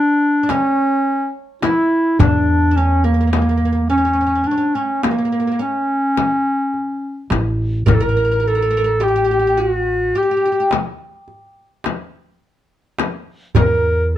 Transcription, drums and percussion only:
0.49 darbuka tek, frame drum
1.62 darbuka tek, frame drum
2.19 darbuka dum, frame drum
2.76 darbuka ka
3.33 darbuka tek, frame drum
3.90 darbuka ka
4.46 darbuka ka
5.03 darbuka tek, frame drum
5.60 darbuka ka
6.17 frame drum
6.74 darbuka ka
7.30 darbuka tek, frame drum
7.87 darbuka dum, frame drum
8.72 darbuka ka
9.01 darbuka tek
10.15 darbuka ka
10.71 darbuka tek, frame drum
11.28 darbuka ka
11.84 darbuka tek, frame drum
12.99 darbuka tek, frame drum
13.55 darbuka dum, frame drum

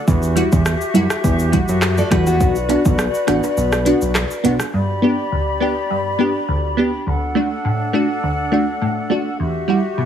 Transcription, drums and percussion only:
0.08 kick, shaker
0.22 shaker
0.37 closed hi-hat, shaker
0.52 kick, shaker
0.65 cross-stick, shaker
0.81 shaker
0.95 closed hi-hat, shaker
1.10 cross-stick, shaker
1.24 kick, shaker
1.39 shaker
1.53 kick, closed hi-hat, shaker
1.68 shaker
1.82 cross-stick, clap, shaker
1.98 shaker
2.12 kick, cross-stick, closed hi-hat, shaker
2.26 shaker
2.40 kick, shaker
2.55 shaker
2.69 closed hi-hat, high timbale, shaker
2.85 kick, shaker
2.99 cross-stick, shaker
3.14 shaker
3.28 cross-stick, closed hi-hat, shaker
3.43 high timbale, shaker
3.57 shaker
3.72 cross-stick, shaker
3.86 closed hi-hat, shaker
4.02 shaker
4.15 cross-stick, clap, shaker
4.31 shaker
4.45 closed hi-hat, shaker
4.60 cross-stick, shaker

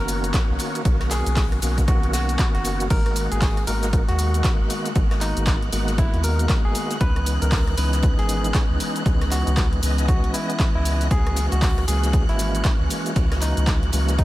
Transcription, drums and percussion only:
0.08 open hi-hat, ride, cabasa
0.24 closed hi-hat, ride, cabasa
0.33 kick, snare, clap, closed hi-hat, ride, cabasa
0.59 open hi-hat, ride, cabasa
0.75 closed hi-hat, cabasa
0.85 kick, closed hi-hat, ride, cabasa
1.00 cross-stick, snare, closed hi-hat
1.10 snare, clap, open hi-hat, cabasa
1.26 closed hi-hat, cabasa
1.36 kick, snare, clap, closed hi-hat, open hi-hat, cabasa
1.52 cross-stick, closed hi-hat
1.62 open hi-hat, ride, cabasa
1.78 kick, snare, closed hi-hat, cabasa
1.88 kick, closed hi-hat, ride, cabasa
2.03 closed hi-hat
2.13 snare, open hi-hat, ride, cabasa
2.29 closed hi-hat, cabasa
2.39 kick, clap, closed hi-hat, ride, cabasa
2.55 snare, closed hi-hat
2.64 open hi-hat, ride, cabasa
2.80 closed hi-hat, ride, cabasa
2.90 kick, closed hi-hat, crash, ride, cabasa
3.06 cross-stick, closed hi-hat
3.15 open hi-hat, ride, cabasa
3.32 closed hi-hat, ride, cabasa
3.42 kick, snare, clap, closed hi-hat, open hi-hat, cabasa
3.57 cross-stick, closed hi-hat
3.67 open hi-hat, ride, cabasa
3.83 snare, closed hi-hat, cabasa
3.93 kick, closed hi-hat, ride, cabasa
4.08 snare, closed hi-hat
4.19 open hi-hat, ride, cabasa
4.34 closed hi-hat, ride, cabasa
4.44 kick, snare, clap, closed hi-hat, ride, cabasa
4.70 open hi-hat, ride, cabasa
4.86 closed hi-hat, cabasa
4.95 kick, closed hi-hat, ride, cabasa
5.11 cross-stick, snare, closed hi-hat
5.21 clap, open hi-hat, ride, cabasa
5.37 closed hi-hat, cabasa
5.46 kick, snare, clap, closed hi-hat, ride, cabasa
5.62 closed hi-hat
5.72 open hi-hat, ride, cabasa
5.88 snare, closed hi-hat, cabasa
5.98 kick, closed hi-hat, ride, cabasa
6.14 closed hi-hat
6.23 open hi-hat, ride, cabasa
6.39 closed hi-hat, cabasa
6.49 kick, snare, clap, closed hi-hat, ride, cabasa
6.75 open hi-hat, ride, cabasa
6.91 snare, closed hi-hat, cabasa
7.01 kick, closed hi-hat, ride, cabasa
7.16 cross-stick, closed hi-hat
7.26 open hi-hat, ride, cabasa
7.42 closed hi-hat, ride, cabasa
7.52 kick, snare, clap, closed hi-hat, open hi-hat, cabasa
7.67 cross-stick, closed hi-hat
7.78 open hi-hat, ride, cabasa
7.93 snare, closed hi-hat, cabasa
8.02 kick, closed hi-hat, ride, cabasa
8.18 snare, closed hi-hat
8.29 open hi-hat, ride, cabasa
8.44 closed hi-hat, ride, cabasa
8.54 kick, snare, clap, closed hi-hat, ride, cabasa
8.80 open hi-hat, ride, cabasa
8.96 closed hi-hat, cabasa
9.06 kick, closed hi-hat, ride, cabasa
9.21 cross-stick, snare, closed hi-hat
9.31 clap, open hi-hat, ride, cabasa
9.47 closed hi-hat, cabasa
9.57 kick, snare, clap, closed hi-hat, ride, cabasa
9.73 closed hi-hat
9.82 open hi-hat, ride, cabasa
9.98 snare, closed hi-hat, cabasa
10.08 kick, closed hi-hat, ride, cabasa
10.24 closed hi-hat
10.34 open hi-hat, ride, cabasa
10.50 closed hi-hat, cabasa
10.59 kick, snare, clap, closed hi-hat, ride, cabasa
10.85 open hi-hat, ride, cabasa
11.01 snare, closed hi-hat, cabasa
11.11 kick, closed hi-hat, ride, cabasa
11.27 cross-stick, closed hi-hat
11.36 open hi-hat, ride, cabasa
11.51 closed hi-hat, ride, cabasa
11.62 kick, snare, clap, closed hi-hat, open hi-hat, cabasa
11.78 cross-stick, closed hi-hat
11.88 open hi-hat, ride, cabasa
12.03 snare, closed hi-hat, cabasa
12.13 kick, closed hi-hat, ride, cabasa
12.29 snare, closed hi-hat
12.39 open hi-hat, ride, cabasa
12.55 closed hi-hat, ride, cabasa
12.64 kick, snare, clap, closed hi-hat, ride, cabasa
12.90 open hi-hat, ride, cabasa
13.06 closed hi-hat, cabasa
13.16 kick, closed hi-hat, ride, cabasa
13.32 cross-stick, snare, closed hi-hat
13.41 clap, open hi-hat, ride, cabasa
13.57 closed hi-hat, cabasa
13.67 kick, snare, clap, closed hi-hat, ride, cabasa
13.83 closed hi-hat
13.92 open hi-hat, ride, cabasa
14.08 snare, closed hi-hat, cabasa
14.18 kick, closed hi-hat, ride, cabasa

